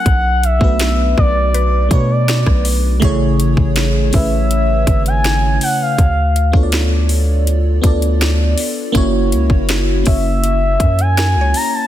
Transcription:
<<
  \new Staff \with { instrumentName = "Soft synth lead" } { \time 4/4 \key a \major \tempo 4 = 81 fis''8 e''4 d''4 cis''16 d''8. r8 | r4. e''4~ e''16 gis''8. fis''16 f''16~ | f''8. r2. r16 | r4. e''4~ e''16 gis''8. ais''16 a''16 | }
  \new Staff \with { instrumentName = "Synth pluck" } { \time 4/4 \key a \major r2 b'4 d''4~ | d''8 r2. r8 | r1 | r2. ais'16 cis''8. | }
  \new Staff \with { instrumentName = "FM electric piano" } { \time 4/4 \key a \major r8. <a b d' fis' b'>4. r16 <a b d' fis' b'>4~ <a b d' fis' b'>16 r16 | <cis a e' gis' cis''>4~ <cis a e' gis' cis''>16 r16 <a cis' e' gis' b'>4.~ <a cis' e' gis' b'>16 r8. | r8. <b d' f' a' cis'' d''>4. r16 <b d' f' a' d''>4~ <b d' f' a' d''>16 r16 | <ais cis' e' fis' cis''>4~ <ais cis' e' fis' cis''>16 r16 <ais cis' e' fis' cis''>4.~ <ais cis' e' fis' cis''>16 r8. | }
  \new Staff \with { instrumentName = "808-style bass" } { \clef bass \time 4/4 \key a \major b,,8. b,,8. b,,4 b,8. b,,8. | a,,8. a,,8. a,,4 gis,,4 r8 | d,8. d,4.~ d,16 d,4 r8 | fis,,8 cis,16 fis,,8. fis,,4 fis,8. cis,16 r8 | }
  \new DrumStaff \with { instrumentName = "Drums" } \drummode { \time 4/4 <hh bd>8 hh16 bd16 <hh sn>8 bd8 hh8 <hh bd>8 <hh sn>16 <bd ss>16 hho8 | <hh bd>8 hh16 bd16 <hh sn>8 <hho bd>8 hh8 <hh bd>16 hh16 <hh sn>8 hho8 | <hh bd>8 hh16 bd16 <hh sn>8 hho8 hh8 <hh bd>16 hh16 <hh sn>8 hho8 | <hh bd>8 hh16 bd16 <hh sn>8 <hho bd>8 hh8 <hh bd>16 hh16 <hh sn>8 hho8 | }
>>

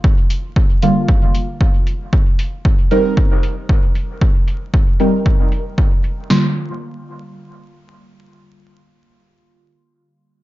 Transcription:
<<
  \new Staff \with { instrumentName = "Synth stab" } { \time 4/4 \key g \minor \tempo 4 = 115 <d g bes f'>4. <d g bes f'>2~ <d g bes f'>8 | r4. <g c' ees' bes'>2~ <g c' ees' bes'>8~ | <g c' ees' bes'>4. <g c' ees' bes'>2~ <g c' ees' bes'>8 | <d g bes f'>1~ |
<d g bes f'>1 | }
  \new DrumStaff \with { instrumentName = "Drums" } \drummode { \time 4/4 bd8 hho8 bd8 hho8 bd8 hho8 bd8 hho8 | bd8 hho8 bd8 hho8 bd8 hho8 bd8 hho8 | bd8 hho8 bd8 hho8 bd8 hho8 bd8 hho8 | sn4 r4 r4 r4 |
r4 r4 r4 r4 | }
>>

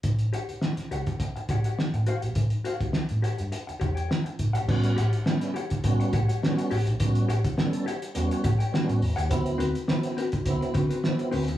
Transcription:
<<
  \new Staff \with { instrumentName = "Hollow-body jazz guitar" } { \time 4/4 \key a \mixolydian \tempo 4 = 104 r8 <g' cis'' fis''>16 r8. <g' cis'' fis''>16 r8. <g' cis'' fis''>16 <g' cis'' fis''>16 r8 <g' cis'' fis''>16 r16 | r8 <g' cis'' fis''>16 r8. <g' cis'' fis''>16 r8. <g' cis'' fis''>16 <g' cis'' g''>16 r8. <g' cis'' fis''>16 | r8 <g' cis'' fis''>16 r8. <g' cis'' fis''>16 r8. <g' cis'' fis''>16 <g' cis'' fis''>16 r8 <g' cis'' fis''>16 r16 | r8 <g' cis'' fis''>16 r8. <g' cis'' fis''>16 r8. <g' cis'' fis''>16 <g' cis'' g''>16 r8. <g' cis'' fis''>16 |
r8 <c' fis' b'>16 r8. <c' fis' b'>16 r8. <c' fis' b'>16 <c' fis' b'>16 r8 <c' fis' b'>16 r16 | }
  \new Staff \with { instrumentName = "Tonewheel organ" } { \time 4/4 \key a \mixolydian r1 | r1 | <g b cis' fis'>8 r8 <g b cis' e'>8 r8 <g b cis' fis'>8 r8 <g b cis' fis'>8 r8 | <g b cis' fis'>8 r8 <g b cis' a'>8 r8 <g b cis' fis'>8 r8 <g b cis' fis'>8 r8 |
<fis b c' e'>8 r8 <fis b c' e'>8 r8 <fis b c' e'>8 r8 <fis b c' e'>8 r8 | }
  \new Staff \with { instrumentName = "Fingered electric bass" } { \clef bass \time 4/4 \key a \mixolydian a,,8 r4 cis,16 r8. a,,16 r8 a,16 r16 bes,,16 | a,,16 r8 cis,16 r16 a,16 r16 g,16 r8 e,8 r8 a,,16 bes,,16 | a,,8 a,,16 r4 r16 a,,16 r16 a,16 r8. a,,16 bes,,16 | a,,8 a,,16 r4 r16 e,16 r16 a,16 r8 a,,16 e,16 dis,16 |
d,8 d,16 r4 r16 d,16 r16 d16 r8. d,16 dis,16 | }
  \new DrumStaff \with { instrumentName = "Drums" } \drummode { \time 4/4 <hh bd>16 hh16 hh16 hh16 sn16 <hh sn>16 hh16 <hh bd>16 <hh bd>16 hh16 <hh bd>16 hh16 sn16 hh16 hh16 hh16 | <hh bd>16 hh16 hh16 <hh bd>16 sn16 hh16 hh16 hh16 hh16 hh16 <hh bd>16 hh16 sn16 hh16 <hh bd>16 hh16 | <cymc bd>16 hh16 hh16 hh16 sn16 <hh sn>16 hh16 <hh bd>16 <hh bd>16 hh16 <hh bd>16 hh16 sn16 hh16 hho16 hh16 | <hh bd>16 hh16 hh16 <hh bd>16 sn16 hh16 hh16 hh16 hh16 hh16 <hh bd>16 hh16 sn16 hh16 hho16 hh16 |
<hh bd>16 hh16 hh16 hh16 sn16 <hh sn>16 hh16 <hh bd>16 <hh bd>16 hh16 <hh bd>16 hh16 sn16 hh16 hho16 hh16 | }
>>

